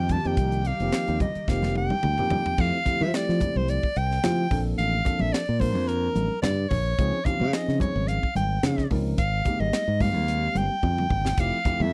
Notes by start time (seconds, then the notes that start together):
Already playing: F2 D#3 A#3 G4 G5
0.09 A5, kick, closed hi-hat, high conga, low conga
0.25 F2 F3 A#3 C4 D#4 G4 G5, closed hi-hat
0.37 C2, kick, closed hi-hat
0.52 closed hi-hat
0.65 F5, closed hi-hat, high conga
0.80 F1 F3 A#3 C4 D#4 G4, closed hi-hat
0.92 snare, closed hi-hat
1.08 D#2, closed hi-hat
1.20 D#5, kick, closed hi-hat, high conga, low conga
1.35 muted fingered electric bass stroke, closed hi-hat
1.48 F1 F3 A#3 C4 D#4 G4 F5, kick, snare
1.62 snare, high conga
1.75 G5, high tom
1.90 high tom, high conga
2.03 D2, mid tom
2.18 F3 A#3 C4 D#4 G4, muted fingered electric bass stroke, mid tom, low conga
2.30 F2, floor tom, high conga, low conga
2.46 floor tom
2.58 F2 F3 A3 C4 E4 G4 F5, kick, crash
2.85 F3 A3 C4 E4 G4, muted fingered electric bass stroke, kick, closed hi-hat, low conga
3.00 F3 E5, high conga
3.14 F3 A3 C4 E4 G4 D5, snare, closed hi-hat
3.29 F3, snare
3.40 kick, closed hi-hat, high conga, low conga
3.55 C2 C5, high conga
3.68 D5, closed hi-hat
3.83 kick
3.96 C2 G5, closed hi-hat
4.11 snare
4.23 F3 A3 C4 E4 G4, snare, closed hi-hat, low conga
4.50 A#1 F3 A#3 C4 D4 A4, kick, open hi-hat, low conga
4.78 A1 F5, closed hi-hat
5.05 F3 A#3 C4 D4 A4, kick, closed hi-hat, low conga
5.19 A#1 E5, high conga
5.33 D5, snare, closed hi-hat
5.49 A#2
5.60 F3 A#3 C4 D4 A#4 C5, kick, open hi-hat, high conga
5.75 F2, high conga
5.88 A#4, closed hi-hat
6.15 A1, closed hi-hat, high conga
6.42 G2 D5, snare, closed hi-hat, low conga
6.70 A#1 C#5, kick, open hi-hat, low conga
6.99 C#2 F3 C4 C#4 D#4 G#4, kick, closed hi-hat
7.25 F3 C4 C#4 D#4 G4 F5, muted fingered electric bass stroke, kick, closed hi-hat, low conga
7.40 C#3, high conga
7.53 F3 C4 C#4 D#4 G#4 D#5, snare, closed hi-hat
7.68 C#3, snare
7.80 C#5, kick, closed hi-hat, high conga, low conga
7.96 G#1, high conga
8.08 F5, closed hi-hat
8.23 muted fingered electric bass stroke, kick
8.35 G#1 G5, closed hi-hat, high conga
8.63 C#3 F3 C4 C#4 D#4 G#4, snare, closed hi-hat, low conga
8.78 kick, snare
8.90 C#2 F3 C4 C#4 D#4 A#4, kick, open hi-hat, low conga
9.18 G#1 F5, kick, closed hi-hat
9.45 G#3 A#3 C4 D#4 G4, kick, closed hi-hat, low conga
9.60 G#1 D#5, high conga
9.73 snare, closed hi-hat
9.88 G#2
10.01 G#3 A#3 C4 D#4 G4 F5, kick, open hi-hat, high conga, low conga
10.15 D#2, high conga
10.28 closed hi-hat
10.55 G1 G5, closed hi-hat, high conga
10.83 F2, kick, low conga
10.98 mid tom, high conga
11.10 G#1, kick, low conga
11.25 snare, low conga
11.38 F1 F3 A3 C4 E4 G4 F5, kick, closed hi-hat, crash
11.65 F3 A3 C4 E4 G4, muted fingered electric bass stroke, kick, closed hi-hat, low conga
11.80 F2 E5, high conga